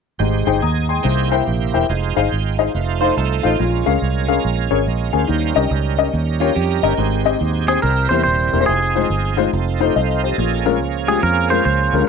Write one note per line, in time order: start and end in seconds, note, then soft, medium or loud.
0.19 0.43 G#1 medium
0.19 0.86 G#2 medium
0.19 1.03 G#3 medium
0.19 0.61 D#4 medium
0.19 0.61 G4 medium
0.19 0.61 C5 medium
0.47 0.60 G1 medium
0.47 0.55 D#4 medium
0.47 0.55 G#4 medium
0.47 0.55 C5 medium
0.47 0.55 G5 medium
0.62 0.99 D#2 medium
0.62 0.88 D#5 medium
0.62 0.88 G#5 medium
0.62 0.88 A#5 medium
0.62 0.88 D#6 medium
0.89 1.30 D#4 soft
0.89 1.30 G#4 medium
0.89 1.30 G5 soft
0.89 1.29 C6 medium
1.03 1.41 C2 loud
1.03 1.70 C3 medium
1.03 1.87 A#3 medium
1.03 1.87 E4 medium
1.03 1.87 G4 medium
1.03 1.87 C5 medium
1.31 1.40 E4 medium
1.31 1.40 A#4 medium
1.31 1.40 C5 medium
1.31 1.40 G5 medium
1.47 1.70 A#1 medium
1.74 1.87 E1 medium
1.74 1.82 E4 medium
1.74 1.82 A#4 medium
1.74 1.82 C5 medium
1.74 1.82 G5 medium
1.89 2.12 F1 medium
1.89 2.73 G#3 medium
1.89 2.72 D#4 medium
1.89 2.73 F4 medium
1.89 2.31 C5 medium
2.16 2.30 G1 medium
2.16 2.24 D#4 medium
2.16 2.25 G#4 medium
2.16 2.24 C5 medium
2.16 2.25 F5 medium
2.30 2.68 G#1 medium
2.30 2.57 G5 soft
2.30 2.57 C6 medium
2.58 2.67 D#4 medium
2.58 2.67 G#4 medium
2.58 2.67 C5 medium
2.58 2.78 C5 soft
2.58 2.67 D#5 medium
2.58 2.99 F5 medium
2.75 3.10 F1 loud
2.75 3.58 A3 medium
2.75 3.58 D#4 medium
2.75 3.58 F4 medium
2.75 2.81 B4 medium
2.79 3.60 C5 medium
3.01 3.09 D#4 medium
3.01 3.09 A4 medium
3.01 3.15 C5 medium
3.01 3.09 C5 medium
3.01 3.09 F5 medium
3.17 3.40 C2 medium
3.17 3.43 A4 medium
3.43 3.57 A1 medium
3.43 3.52 D#4 medium
3.43 3.85 F4 medium
3.43 3.52 A4 medium
3.43 3.52 C5 medium
3.43 3.51 F5 medium
3.59 3.83 A#1 loud
3.59 4.25 A#2 medium
3.59 5.25 G#3 medium
3.59 3.66 C4 medium
3.59 5.25 F4 medium
3.59 4.69 A#4 medium
3.65 5.26 C#4 medium
3.86 4.00 C#2 medium
3.86 3.94 C#4 medium
3.86 3.94 G#4 medium
3.86 3.94 A#4 medium
3.86 3.94 F5 medium
4.02 4.38 C2 medium
4.28 4.36 C#4 medium
4.28 4.37 G#4 medium
4.28 4.36 A#4 medium
4.28 4.36 F5 medium
4.45 4.67 A#1 medium
4.71 4.84 G#1 medium
4.71 4.79 C#4 medium
4.71 4.79 G#4 medium
4.71 4.87 G#4 soft
4.71 4.79 A#4 medium
4.71 4.79 C#5 medium
4.71 4.86 C#5 medium
4.87 5.10 A#1 medium
4.87 5.13 A#4 medium
4.87 5.13 D#5 medium
5.13 5.26 D2 medium
5.13 5.21 C#4 medium
5.13 5.21 G#4 medium
5.13 5.21 A#4 medium
5.13 5.54 C5 soft
5.13 5.53 F5 medium
5.13 5.21 G#5 medium
5.27 5.52 D#2 medium
5.27 5.94 D#3 medium
5.27 6.94 G3 medium
5.27 6.94 C#4 medium
5.27 6.94 D#4 medium
5.27 6.94 A#4 medium
5.56 5.69 C2 medium
5.56 5.64 C#4 medium
5.56 5.64 G4 medium
5.56 5.64 A#4 medium
5.56 5.64 D#5 medium
5.71 6.07 C#2 medium
5.98 6.06 C#4 medium
5.98 6.06 G4 medium
5.98 6.06 A#4 medium
5.98 6.06 D#5 medium
6.14 6.50 D#2 loud
6.40 6.49 C#4 medium
6.40 6.55 F4 medium
6.40 6.49 G4 medium
6.40 6.49 A#4 medium
6.40 6.49 C#5 medium
6.55 6.79 F2 medium
6.55 6.82 G4 medium
6.83 6.96 G1 medium
6.83 6.91 C#4 medium
6.83 6.91 G4 medium
6.83 6.91 A#4 medium
6.83 7.24 A#4 medium
6.83 6.91 D#5 medium
6.97 7.34 G#1 medium
6.97 7.64 G#2 medium
6.97 7.81 C4 medium
6.97 7.81 D#4 medium
6.97 7.81 G4 medium
6.97 7.81 G#4 medium
7.25 7.33 C4 medium
7.25 7.33 G4 medium
7.25 7.33 G#4 medium
7.25 7.34 D#5 medium
7.41 7.77 D#2 medium
7.68 7.76 C4 medium
7.68 7.76 G4 medium
7.68 7.82 G#4 medium
7.68 7.76 G#4 medium
7.68 7.76 C5 medium
7.82 8.06 C2 medium
7.82 8.49 C3 medium
7.82 8.66 G3 medium
7.82 8.66 C4 medium
7.82 8.66 E4 medium
7.82 8.09 A#4 medium
7.82 8.66 A#4 medium
8.09 8.24 E2 medium
8.09 8.19 A#3 medium
8.09 8.19 E4 medium
8.09 8.19 G4 medium
8.09 8.22 C5 medium
8.09 8.19 C5 medium
8.24 8.49 D#1 medium
8.24 8.64 C5 medium
8.53 8.66 E1 medium
8.53 8.57 A#3 medium
8.53 8.57 E4 medium
8.53 8.57 G4 medium
8.53 8.57 A#4 medium
8.60 8.68 A#3 medium
8.60 8.68 E4 medium
8.60 8.68 G4 medium
8.60 8.68 C5 medium
8.66 9.05 F1 medium
8.66 9.51 F3 medium
8.66 9.51 C4 medium
8.66 9.51 D#4 medium
8.66 8.75 G4 medium
8.66 9.33 G#4 medium
8.73 9.54 G#4 medium
8.96 9.04 G#3 medium
8.96 9.04 D#4 medium
8.96 9.04 F4 medium
8.96 9.04 C5 medium
9.10 9.46 G1 medium
9.37 9.46 G#3 medium
9.37 9.46 D#4 medium
9.37 9.46 F4 medium
9.37 9.46 C5 medium
9.53 9.89 F1 loud
9.53 10.37 F3 medium
9.53 10.37 C4 medium
9.53 10.37 D#4 medium
9.53 9.80 A4 medium
9.80 9.88 A3 medium
9.80 9.88 D#4 medium
9.80 9.88 F4 medium
9.80 9.96 G4 soft
9.80 9.88 C5 medium
9.80 9.96 C5 medium
9.96 10.32 C2 medium
9.96 10.22 A4 medium
9.96 10.22 C5 medium
9.96 10.22 D#5 medium
9.96 10.22 F5 medium
10.23 10.64 G4 soft
10.23 10.64 A4 soft
10.23 10.64 C5 medium
10.23 10.64 D#5 medium
10.38 10.81 A#1 medium
10.38 11.04 A#2 medium
10.38 12.05 F3 medium
10.38 12.05 A#3 medium
10.38 12.05 C#4 medium
10.38 12.05 G#4 medium
10.65 10.73 G#3 medium
10.65 10.74 C#4 medium
10.65 10.74 F4 medium
10.65 10.74 A#4 loud
10.81 11.17 C#2 medium
11.07 11.16 G#3 medium
11.07 11.16 C#4 medium
11.07 11.16 F4 medium
11.07 11.16 G4 medium
11.07 11.23 G#4 medium
11.23 11.59 F2 medium
11.23 11.50 A#4 medium
11.50 11.59 G#3 medium
11.50 11.59 C#4 medium
11.50 11.59 F4 medium
11.50 11.59 A#4 medium
11.50 11.64 C5 medium
11.65 11.89 C#2 medium
11.65 12.05 C5 medium
11.93 12.06 D2 medium
11.93 11.97 G#3 medium
11.93 11.97 C#4 medium
11.93 11.97 F4 medium
11.93 11.97 A#4 medium
12.01 12.09 G#3 medium
12.01 12.09 C#4 medium
12.01 12.09 F4 medium
12.01 12.09 A#4 medium